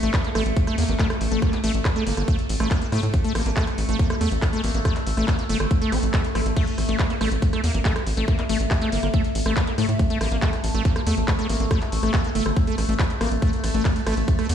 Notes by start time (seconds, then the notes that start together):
Already playing: A3
0.03 A1 A3, closed hi-hat
0.14 A#3, kick, clap, closed hi-hat
0.24 A#3, closed hi-hat
0.35 A1 A3, cross-stick, open hi-hat
0.46 A1, closed hi-hat
0.57 kick, closed hi-hat
0.67 A3, cross-stick, closed hi-hat
0.78 E2 A#3, open hi-hat
0.89 A1 A#3, closed hi-hat
0.99 A3, kick, clap, closed hi-hat
1.10 cross-stick, closed hi-hat
1.21 A1, open hi-hat
1.32 A1 A3, closed hi-hat
1.42 kick, cross-stick, closed hi-hat
1.53 A#3, clap, closed hi-hat
1.64 A1 A3, open hi-hat
1.74 A1, closed hi-hat
1.85 kick, cross-stick, clap, closed hi-hat
1.96 A3, closed hi-hat
2.07 G1 A#3, open hi-hat
2.17 G1 A#3, cross-stick, closed hi-hat
2.28 A3, kick, closed hi-hat
2.39 closed hi-hat
2.49 A1, open hi-hat
2.60 A1 A3, cross-stick, closed hi-hat
2.71 A#3, kick, clap, closed hi-hat
2.82 A#3, closed hi-hat
2.92 A2 A3, cross-stick, open hi-hat
3.03 A2, closed hi-hat
3.14 kick, closed hi-hat
3.24 A3, closed hi-hat
3.35 A1 A#3, cross-stick, open hi-hat
3.46 A1 A#3, closed hi-hat
3.57 A3, kick, clap, closed hi-hat
3.67 cross-stick, closed hi-hat
3.78 A1, open hi-hat
3.89 A1 A3, closed hi-hat
3.99 A#3, kick, closed hi-hat
4.10 A#3, cross-stick, closed hi-hat
4.21 E2 A3, open hi-hat
4.32 A1, closed hi-hat
4.42 kick, cross-stick, clap, closed hi-hat
4.53 A3, closed hi-hat
4.64 A1 A#3, open hi-hat
4.74 A1 A#3, closed hi-hat
4.85 A3, kick, cross-stick, closed hi-hat
4.96 clap, closed hi-hat
5.07 A1, open hi-hat
5.17 A1 A3, cross-stick, closed hi-hat
5.28 A#3, kick, clap, closed hi-hat
5.39 A#3, closed hi-hat
5.49 G1 A3, open hi-hat
5.60 G1, cross-stick, closed hi-hat
5.71 kick, closed hi-hat, swell
5.82 A3, closed hi-hat
5.92 A1 C#4, cross-stick, open hi-hat
6.03 A1, closed hi-hat
6.14 A3, kick, clap, closed hi-hat
6.24 closed hi-hat
6.35 A1 A3, cross-stick, open hi-hat
6.46 A1, closed hi-hat
6.57 A3, kick, closed hi-hat, crash
6.67 closed hi-hat
6.78 A1, cross-stick, open hi-hat
6.89 A1 A3, closed hi-hat
6.99 kick, clap, closed hi-hat
7.10 A#3, closed hi-hat
7.21 A1 A3, cross-stick, open hi-hat
7.32 A1, closed hi-hat
7.42 kick, closed hi-hat
7.53 A3, cross-stick, closed hi-hat
7.64 E2 A#3, open hi-hat
7.74 A1 A#3, closed hi-hat
7.85 A3, kick, clap, closed hi-hat
7.96 cross-stick, closed hi-hat
8.07 A1, open hi-hat
8.17 A1 A3, closed hi-hat
8.28 A#3, kick, cross-stick, closed hi-hat
8.39 A#3, clap, closed hi-hat
8.49 A1 A3, open hi-hat
8.60 A1, closed hi-hat
8.71 kick, cross-stick, clap, closed hi-hat
8.82 A3, closed hi-hat
8.92 G1 A#3, open hi-hat
9.03 G1 A#3, cross-stick, closed hi-hat
9.14 A3, kick, closed hi-hat
9.24 closed hi-hat
9.35 A1, open hi-hat
9.46 A1 A3, cross-stick, closed hi-hat
9.57 kick, clap, closed hi-hat
9.67 A#3, closed hi-hat
9.78 A2 A3, cross-stick, open hi-hat
9.89 A2, closed hi-hat
9.99 kick, closed hi-hat
10.10 A3, closed hi-hat
10.21 A1 A#3, cross-stick, open hi-hat
10.32 A1 A#3, closed hi-hat
10.42 A3, kick, clap, closed hi-hat
10.53 cross-stick, closed hi-hat
10.64 A1, open hi-hat
10.74 A1 A3, closed hi-hat
10.85 A#3, kick, closed hi-hat
10.96 A#3, cross-stick, closed hi-hat
11.07 E2 A3, open hi-hat
11.17 A1, closed hi-hat
11.28 kick, cross-stick, clap, closed hi-hat
11.39 A3, closed hi-hat
11.49 A1 A#3, open hi-hat
11.60 A1 A#3, closed hi-hat
11.71 A3, kick, cross-stick, closed hi-hat
11.82 clap, closed hi-hat
11.92 A1, open hi-hat
12.03 A1 A3, cross-stick, closed hi-hat
12.14 A#3, kick, clap, closed hi-hat
12.24 A#3, closed hi-hat
12.35 G1 A3, open hi-hat
12.46 G1, cross-stick
12.57 kick, closed hi-hat
12.67 A3, closed hi-hat
12.78 A1, cross-stick, open hi-hat
12.89 A1 A3, closed hi-hat
12.99 E4, kick, clap, closed hi-hat
13.10 closed hi-hat
13.21 A1 A#3, cross-stick, open hi-hat
13.32 A1, closed hi-hat
13.42 A3, kick, closed hi-hat
13.53 closed hi-hat
13.64 A1, cross-stick, open hi-hat, ride
13.74 A1 A3, closed hi-hat
13.85 A#3, kick, clap, closed hi-hat
13.96 A3, closed hi-hat
14.07 A1 A3, cross-stick, open hi-hat, ride
14.17 A1, closed hi-hat
14.28 kick, closed hi-hat
14.39 A3, cross-stick, closed hi-hat
14.49 E2 A#3, open hi-hat, ride